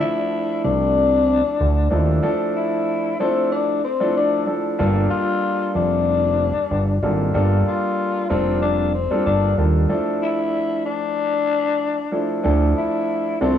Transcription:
Already playing: grand piano F3 A3 D4 E4 A4
0.00 tenor saxophone E4
0.64 analog synth bass C2, tenor saxophone D4
1.60 analog synth bass D2
1.90 analog synth bass D#2, grand piano F3 A3 D4 E4 A4
2.22 grand piano F3 A3 D4 E4 A4
2.56 tenor saxophone E4
3.19 grand piano F3 A3 D4 E4 A4, tenor saxophone C4
3.51 tenor saxophone D4
3.84 tenor saxophone C4
4.00 grand piano F3 A3 D4 E4 A4
4.17 tenor saxophone D4
4.46 grand piano F3 A3 D4 E4 A4
4.79 analog synth bass G1, grand piano G3 A#3 D4 F4 A4
5.10 tenor saxophone F4
5.75 analog synth bass F1, tenor saxophone D4
6.71 analog synth bass G1
7.03 analog synth bass G#1, grand piano G3 A#3 D4 F4 A4
7.34 analog synth bass G1, grand piano G3 A#3 D4 F4 A4
7.67 tenor saxophone F4
8.29 analog synth bass F1, grand piano G3 A#3 D4 F4 A4, tenor saxophone C4
8.62 tenor saxophone D4
8.94 tenor saxophone C4
9.10 grand piano G3 A#3 D4 F4 A4
9.25 analog synth bass G1, tenor saxophone D4
9.57 analog synth bass D#2, grand piano G3 A#3 D4 F4 A4
9.89 grand piano F3 A3 D4 E4 A4
10.22 tenor saxophone E4
10.85 tenor saxophone D4
12.11 grand piano F3 A3 D4 E4 A4
12.43 analog synth bass D2, grand piano F3 A3 D4 E4 A4
12.77 tenor saxophone E4
13.41 analog synth bass C2, grand piano F3 A3 D4 E4 A4, tenor saxophone C4

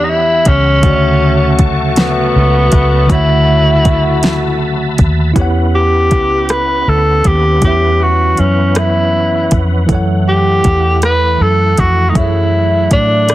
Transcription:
Already playing: fingered electric bass E2, tine electric piano E3 B3 G4 C#5 E5, horn section B3 C#4 G4 C#5, tonewheel organ G4 F#5 B5 E6
0.04 tenor saxophone D#4
0.10 tenor saxophone E4
0.45 fingered electric bass C#2, tenor saxophone C#4, kick, closed hi-hat
0.81 fingered electric bass D2, tine electric piano C#3 A3, horn section F#3 A3 C#4 F#4, tonewheel organ F#4 E5 A5 C#6, kick, closed hi-hat
0.85 tine electric piano F#4 C#5 D5
0.95 tine electric piano E5
1.59 kick, closed hi-hat
1.96 tenor saxophone B3, snare, closed hi-hat
2.36 fingered electric bass C#2
2.72 fingered electric bass C#2, kick, closed hi-hat
3.06 tine electric piano D3 A3, tonewheel organ B5, kick, closed hi-hat
3.10 tenor saxophone E4, tine electric piano F#4 C#5
3.15 tine electric piano F#5
3.85 kick, closed hi-hat
4.23 snare, closed hi-hat
4.98 fingered electric bass D#2, kick, closed hi-hat
5.33 tonewheel organ B3 C#4 E4 B4 F#5, tine electric piano B3 E4 G4, kick, closed hi-hat
5.40 tine electric piano C#5 F#5
5.75 tenor saxophone G4
6.11 fingered electric bass C#2, kick, closed hi-hat
6.49 tenor saxophone B4, cross-stick, closed hi-hat
6.88 fingered electric bass D2, tenor saxophone A4
7.24 fingered electric bass D#2, tenor saxophone G4, kick, closed hi-hat
7.60 fingered electric bass E2, tine electric piano E3 B3, kick, closed hi-hat
7.64 tine electric piano E4 C#5 E5, tenor saxophone G4
8.02 tenor saxophone F#4
8.37 fingered electric bass F#2, tenor saxophone C#4, closed hi-hat
8.75 tenor saxophone E4, cross-stick, closed hi-hat
9.51 fingered electric bass F2, kick, closed hi-hat
9.86 fingered electric bass F#2, tine electric piano E3 E4 A4, tonewheel organ A3 E4, kick, closed hi-hat
9.93 tine electric piano C#5 F#5
10.28 tenor saxophone G4
10.64 fingered electric bass E2, kick, closed hi-hat
11.02 tenor saxophone B4, cross-stick, closed hi-hat
11.41 fingered electric bass F#2, tenor saxophone A4
11.77 fingered electric bass F2, tenor saxophone F#4, kick, closed hi-hat
12.10 tine electric piano F#3, tenor saxophone D#4
12.15 fingered electric bass F#2, tine electric piano E4 G#4, tenor saxophone E4, kick, closed hi-hat
12.19 tine electric piano C#5 E5
12.23 tine electric piano A4
12.91 fingered electric bass A2, tenor saxophone D4, kick, closed hi-hat
13.29 cross-stick, closed hi-hat

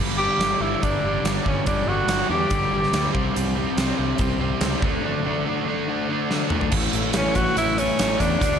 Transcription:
0.00 fingered electric bass G1, overdriven electric guitar G2 D3 G3
0.18 overdriven electric guitar G2 D3 G3, tenor saxophone G4
0.39 fingered electric bass G1, overdriven electric guitar G2 D3 G3, snare, closed hi-hat
0.60 fingered electric bass G1, overdriven electric guitar G2 D3 G3, tenor saxophone E4
0.83 fingered electric bass G1, overdriven electric guitar G2 D3 G3, tenor saxophone D4, kick, closed hi-hat
1.03 fingered electric bass G1, overdriven electric guitar G2 D3
1.07 overdriven electric guitar G3
1.24 fingered electric bass G1, overdriven electric guitar G2 D3 G3, snare, closed hi-hat
1.46 fingered electric bass G1, overdriven electric guitar G2 D3 G3, tenor saxophone C#4, kick
1.66 fingered electric bass G1, overdriven electric guitar G2 D3 G3, tenor saxophone D4, kick, closed hi-hat
1.87 fingered electric bass G1, overdriven electric guitar G2 D3 G3, tenor saxophone F#4
2.07 fingered electric bass G1, overdriven electric guitar G2 D3 G3, snare, closed hi-hat
2.29 fingered electric bass E2, overdriven electric guitar G2 D3 G3, tenor saxophone G4
2.50 fingered electric bass G1, overdriven electric guitar G2 D3 G3, kick, closed hi-hat
2.71 fingered electric bass G1, overdriven electric guitar G2 D3 G3
2.83 snare
2.92 fingered electric bass D2, overdriven electric guitar G2 D3 G3, snare, closed hi-hat
3.13 fingered electric bass C2, overdriven electric guitar C3 G3 C4, kick
3.34 fingered electric bass C2, overdriven electric guitar C3 G3 C4, closed hi-hat
3.55 overdriven electric guitar C3 G3 C4
3.77 fingered electric bass C2, overdriven electric guitar C3 G3 C4, snare, closed hi-hat
3.98 fingered electric bass C2, overdriven electric guitar C3 G3 C4
4.18 fingered electric bass C2, overdriven electric guitar C3 G3 C4, kick, closed hi-hat
4.38 fingered electric bass C2, overdriven electric guitar C3 G3 C4
4.61 fingered electric bass C#2, overdriven electric guitar C3 G3 C4, snare, closed hi-hat
4.82 fingered electric bass D2, overdriven electric guitar D3 A3 D4, kick
5.04 overdriven electric guitar D3 A3 D4
5.26 overdriven electric guitar D3 A3 D4
5.46 overdriven electric guitar D3 A3 D4
5.68 overdriven electric guitar D3 A3 D4
5.89 overdriven electric guitar D3 A3 D4
6.10 overdriven electric guitar D3 A3 D4
6.30 overdriven electric guitar D3 A3 D4, snare
6.50 overdriven electric guitar D3 A3, mid tom
6.54 overdriven electric guitar A3 D4
6.61 floor tom
6.72 fingered electric bass A1, overdriven electric guitar A2 E3 A3 C#4, kick, crash
6.76 overdriven electric guitar E4
6.93 fingered electric bass A1, overdriven electric guitar A3 C#4 E4, closed hi-hat
7.13 fingered electric bass A1, overdriven electric guitar E3 A3 C#4 E4, tenor saxophone C#4, snare, closed hi-hat
7.35 overdriven electric guitar A2 E3 A3 C#4 E4, tenor saxophone F#4, kick, closed hi-hat
7.56 fingered electric bass A1, overdriven electric guitar E3 A3 C#4 E4, tenor saxophone E4, closed hi-hat
7.78 overdriven electric guitar A3 C#4 E4, tenor saxophone C#4, closed hi-hat
7.99 fingered electric bass A1, overdriven electric guitar A2 E3 A3 C#4 E4, snare, closed hi-hat
8.20 fingered electric bass E2, overdriven electric guitar A3 C#4 E4, tenor saxophone D4, kick, closed hi-hat
8.41 fingered electric bass D2, overdriven electric guitar D3 A3 D4 F#4, kick, closed hi-hat

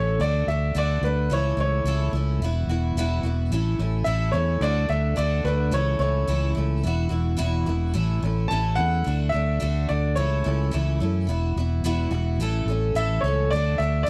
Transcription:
Already playing: fingered electric bass A1, twelve-string acoustic guitar A3 C#4 A4, grand piano C#5
0.19 fingered electric bass D2, twelve-string acoustic guitar D3 A3 D4 F#4, grand piano D5
0.47 fingered electric bass D2, twelve-string acoustic guitar D4 F#4, grand piano E5
0.52 twelve-string acoustic guitar A3
0.75 fingered electric bass D2, twelve-string acoustic guitar D3 A3 D4 F#4, grand piano D5
1.02 fingered electric bass D2, twelve-string acoustic guitar D4 F#4, grand piano B4
1.06 twelve-string acoustic guitar A3
1.30 fingered electric bass C#2, twelve-string acoustic guitar C#3 E3 A3 C#4 E4, grand piano C#5
1.57 fingered electric bass C#2, twelve-string acoustic guitar A3 C#4 E4, grand piano C#5
1.84 fingered electric bass C#2, twelve-string acoustic guitar C#3 E3 A3 C#4 E4
2.13 fingered electric bass C#2, twelve-string acoustic guitar A3 C#4 E4
2.40 fingered electric bass E1, twelve-string acoustic guitar E3
2.44 twelve-string acoustic guitar B3 E4 F#4
2.67 fingered electric bass E1, twelve-string acoustic guitar E4 F#4
2.71 twelve-string acoustic guitar E3 B3
2.95 fingered electric bass E1, twelve-string acoustic guitar E2 B2 E3 B3 E4 F#4
3.23 fingered electric bass E1, twelve-string acoustic guitar E3 B3 E4 F#4
3.51 fingered electric bass A1, twelve-string acoustic guitar A2 E3 A3 C#4 E4
3.79 fingered electric bass A1, twelve-string acoustic guitar A3 C#4 E4
4.04 fingered electric bass A1, twelve-string acoustic guitar A2 E3 A3 C#4 E4, grand piano E5
4.32 fingered electric bass E2, twelve-string acoustic guitar A3 C#4 E4, grand piano C#5
4.61 fingered electric bass D2, twelve-string acoustic guitar D3 A3 D4 F#4, grand piano D5
4.89 fingered electric bass D2, twelve-string acoustic guitar A3 D4 F#4, grand piano E5
5.16 fingered electric bass D2, twelve-string acoustic guitar D3 A3 D4 F#4, grand piano D5
5.44 fingered electric bass D2, twelve-string acoustic guitar A3 D4 F#4, grand piano B4
5.71 fingered electric bass C#2, twelve-string acoustic guitar C#3 E3 A3 C#4 E4, grand piano C#5
5.99 fingered electric bass C#2, twelve-string acoustic guitar A3 C#4 E4, grand piano C#5
6.27 fingered electric bass C#2, twelve-string acoustic guitar C#3 E3 A3 C#4 E4
6.55 fingered electric bass C#2, twelve-string acoustic guitar A3 C#4 E4
6.83 fingered electric bass E1, twelve-string acoustic guitar E3 B3 E4 F#4
7.09 fingered electric bass E1, twelve-string acoustic guitar E3 B3 E4 F#4
7.37 fingered electric bass E1, twelve-string acoustic guitar E2 B2 E3 B3 E4 F#4
7.66 fingered electric bass E1, twelve-string acoustic guitar E3 B3 E4 F#4
7.94 fingered electric bass A1, twelve-string acoustic guitar A2 E3 A3 C#4 E4
8.23 fingered electric bass A1, twelve-string acoustic guitar A3 C#4 E4
8.48 fingered electric bass A1, twelve-string acoustic guitar A2 E3 A3 C#4, grand piano A5
8.53 twelve-string acoustic guitar E4
8.76 fingered electric bass E2, twelve-string acoustic guitar C#4 E4, grand piano F#5
8.80 twelve-string acoustic guitar A3
9.04 fingered electric bass D2, twelve-string acoustic guitar D3 A3 D4 F#4
9.29 twelve-string acoustic guitar F#4, grand piano E5
9.34 fingered electric bass D2, twelve-string acoustic guitar A3 D4
9.60 fingered electric bass D2, twelve-string acoustic guitar D3 A3 D4 F#4
9.89 fingered electric bass D2, twelve-string acoustic guitar A3 D4 F#4, grand piano D5
10.15 fingered electric bass C#2, twelve-string acoustic guitar C#3 E3 A3 C#4 E4, grand piano C#5
10.44 fingered electric bass C#2, twelve-string acoustic guitar A3 C#4 E4
10.71 fingered electric bass C#2, twelve-string acoustic guitar C#3 E3 A3 C#4 E4
11.00 fingered electric bass F#2, twelve-string acoustic guitar A3 C#4 E4
11.27 fingered electric bass E1, twelve-string acoustic guitar E3 B3 E4 F#4
11.56 fingered electric bass E1, twelve-string acoustic guitar E3 B3 E4 F#4
11.84 fingered electric bass E1, twelve-string acoustic guitar E2 B2 E3 B3 E4 F#4
12.11 fingered electric bass E1, twelve-string acoustic guitar E3 B3 E4 F#4
12.38 fingered electric bass A1, twelve-string acoustic guitar A2 E3 A3
12.42 twelve-string acoustic guitar C#4 A4
12.66 fingered electric bass A1, twelve-string acoustic guitar A4
12.70 twelve-string acoustic guitar A3 C#4
12.95 fingered electric bass A1, twelve-string acoustic guitar A2 E3 A3 C#4 A4, grand piano E5
13.21 fingered electric bass C#2, twelve-string acoustic guitar A4, grand piano C#5
13.26 twelve-string acoustic guitar A3 C#4
13.51 fingered electric bass D2, twelve-string acoustic guitar D3 A3, grand piano D5
13.55 twelve-string acoustic guitar D4 F#4
13.78 fingered electric bass D2, twelve-string acoustic guitar D4 F#4, grand piano E5
13.83 twelve-string acoustic guitar A3
14.03 twelve-string acoustic guitar D3, grand piano D5

